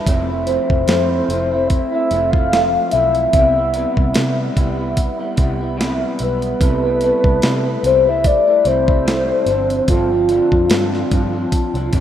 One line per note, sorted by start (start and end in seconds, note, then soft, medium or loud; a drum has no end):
0.06 0.57 F1 loud
0.06 0.29 F3 medium
0.06 0.29 A3 medium
0.06 0.28 C4 medium
0.06 0.27 E4 medium
0.06 kick loud
0.06 closed hi-hat medium
0.28 0.46 A3 soft
0.28 0.46 C4 soft
0.28 0.47 E4 medium
0.46 0.86 F3 medium
0.46 0.87 A3 medium
0.46 0.87 C4 medium
0.46 0.88 E4 medium
0.46 1.69 C5 medium
0.46 closed hi-hat medium
0.70 0.84 F1 medium
0.70 kick medium
0.87 1.20 F2 medium
0.87 1.27 F3 medium
0.87 1.28 A3 medium
0.87 1.28 C4 medium
0.87 1.29 E4 medium
0.87 snare loud
0.87 closed hi-hat medium
1.28 1.79 F1 medium
1.28 1.51 F3 medium
1.28 1.51 A3 medium
1.28 1.51 C4 medium
1.28 1.50 E4 medium
1.28 closed hi-hat medium
1.51 1.93 A3 soft
1.51 1.91 C4 soft
1.51 1.91 E4 medium
1.67 2.32 E5 loud
1.67 kick medium
1.67 closed hi-hat medium
1.92 2.10 A3 soft
1.92 2.11 C4 soft
1.92 2.10 E4 soft
2.11 2.76 F1 medium
2.11 2.33 F3 medium
2.11 2.33 A3 medium
2.11 2.34 C4 medium
2.11 2.33 E4 medium
2.11 closed hi-hat medium
2.31 2.52 E4 medium
2.31 2.93 F5 loud
2.31 kick loud
2.35 2.51 A3 soft
2.35 2.51 C4 soft
2.52 2.91 F3 medium
2.52 2.92 A3 medium
2.52 2.93 C4 medium
2.52 snare loud
2.52 closed hi-hat medium
2.91 3.26 B1 medium
2.91 3.33 F3 medium
2.91 3.34 A3 medium
2.91 3.34 C4 medium
2.91 3.34 E4 medium
2.91 3.32 E5 loud
2.91 closed hi-hat medium
3.15 closed hi-hat soft
3.33 3.84 C2 loud
3.33 3.56 C3 medium
3.33 3.56 G3 medium
3.33 3.56 B3 medium
3.33 3.55 E4 medium
3.33 4.11 E5 medium
3.33 kick loud
3.33 closed hi-hat medium
3.56 3.73 G3 soft
3.56 3.74 B3 soft
3.56 3.74 E4 medium
3.74 4.12 C3 medium
3.74 4.13 G3 medium
3.74 4.13 B3 medium
3.74 4.14 E4 medium
3.74 closed hi-hat medium
3.97 4.12 C2 medium
3.97 kick medium
4.13 4.54 C3 medium
4.13 4.49 C3 medium
4.13 4.54 G3 medium
4.13 4.56 B3 medium
4.13 4.56 E4 medium
4.13 snare loud
4.13 closed hi-hat medium
4.55 5.07 C2 medium
4.55 4.78 C3 medium
4.55 4.78 G3 medium
4.55 4.77 B3 medium
4.55 4.76 E4 medium
4.55 kick medium
4.55 closed hi-hat medium
4.77 5.19 G3 soft
4.77 5.18 B3 medium
4.77 5.17 E4 medium
4.97 kick medium
4.97 closed hi-hat medium
5.18 5.35 G3 soft
5.18 5.36 B3 soft
5.18 5.37 E4 soft
5.36 6.03 C2 medium
5.36 5.59 C3 medium
5.36 5.60 G3 medium
5.36 5.60 B3 medium
5.36 5.58 E4 medium
5.36 kick medium
5.36 closed hi-hat medium
5.59 5.77 G3 soft
5.59 5.77 B3 soft
5.59 5.78 E4 medium
5.77 6.19 C3 medium
5.77 6.18 G3 medium
5.77 6.19 B3 medium
5.77 6.20 E4 medium
5.77 snare medium
5.77 closed hi-hat medium
6.19 6.53 B1 medium
6.19 6.59 G3 medium
6.19 6.60 B3 medium
6.19 6.60 E4 medium
6.19 7.87 B4 loud
6.19 closed hi-hat medium
6.42 closed hi-hat soft
6.60 7.11 C2 medium
6.60 6.83 C3 medium
6.60 6.83 G3 medium
6.60 6.83 A3 medium
6.60 6.82 E4 medium
6.60 kick loud
6.60 closed hi-hat medium
6.83 7.01 G3 soft
6.83 7.01 A3 soft
6.83 7.01 E4 medium
7.01 7.41 C3 medium
7.01 7.41 G3 medium
7.01 7.42 A3 medium
7.01 7.43 E4 medium
7.01 closed hi-hat medium
7.24 7.39 C2 medium
7.24 kick medium
7.42 7.65 C3 medium
7.42 7.76 C3 medium
7.42 7.65 G3 medium
7.42 7.65 A3 medium
7.42 7.63 E4 medium
7.42 snare loud
7.42 closed hi-hat medium
7.65 7.83 G3 soft
7.65 7.83 A3 soft
7.65 7.83 E4 soft
7.83 8.34 C2 medium
7.83 8.06 C3 medium
7.83 8.06 G3 medium
7.83 8.05 A3 medium
7.83 8.04 E4 medium
7.83 8.07 C5 loud
7.83 closed hi-hat medium
8.05 8.47 G3 soft
8.05 8.46 A3 soft
8.05 8.45 E4 soft
8.05 8.28 E5 medium
8.24 8.68 D5 loud
8.24 kick medium
8.24 closed hi-hat medium
8.46 8.64 G3 soft
8.46 8.65 A3 soft
8.46 8.65 E4 soft
8.64 9.31 C2 medium
8.64 8.87 C3 soft
8.64 8.88 G3 medium
8.64 8.87 A3 medium
8.64 8.85 E4 medium
8.64 9.89 C5 loud
8.64 closed hi-hat medium
8.87 9.06 G3 soft
8.87 9.06 A3 soft
8.87 9.06 E4 medium
8.87 kick medium
9.06 9.46 C3 medium
9.06 9.48 G3 medium
9.06 9.48 A3 medium
9.06 9.48 E4 medium
9.06 snare medium
9.06 closed hi-hat medium
9.46 9.79 G1 medium
9.46 9.88 D3 medium
9.46 9.88 F3 medium
9.46 9.89 C4 medium
9.46 9.89 D4 medium
9.46 closed hi-hat medium
9.70 closed hi-hat soft
9.88 10.39 G1 loud
9.88 10.11 G2 medium
9.88 10.11 D3 medium
9.88 10.11 F3 medium
9.88 10.10 C4 medium
9.88 10.10 D4 medium
9.88 12.00 F4 medium
9.88 kick loud
9.88 closed hi-hat medium
10.11 10.28 F3 soft
10.11 10.29 C4 soft
10.11 10.29 D4 soft
10.29 10.69 D3 medium
10.29 10.70 F3 medium
10.29 10.70 C4 medium
10.29 10.70 D4 medium
10.29 closed hi-hat medium
10.52 10.67 F2 medium
10.52 kick medium
10.70 11.11 G2 medium
10.70 11.03 G2 medium
10.70 11.09 D3 medium
10.70 11.10 F3 medium
10.70 11.11 C4 medium
10.70 11.12 D4 medium
10.70 snare loud
10.70 closed hi-hat medium
10.94 snare soft
11.11 11.44 G2 medium
11.11 11.33 D3 medium
11.11 11.33 F3 medium
11.11 11.33 C4 medium
11.11 11.32 D4 medium
11.11 kick medium
11.11 closed hi-hat medium
11.33 11.75 F3 soft
11.33 11.75 C4 medium
11.33 11.73 D4 medium
11.52 kick medium
11.52 closed hi-hat medium
11.74 11.89 C2 medium
11.74 11.93 F3 medium
11.74 11.93 C4 soft
11.74 11.93 D4 medium
11.74 closed hi-hat soft
11.92 12.00 G1 medium
11.92 12.00 D3 medium
11.92 12.00 F3 medium
11.92 12.00 C4 medium
11.92 12.00 D4 medium
11.92 kick medium
11.92 closed hi-hat medium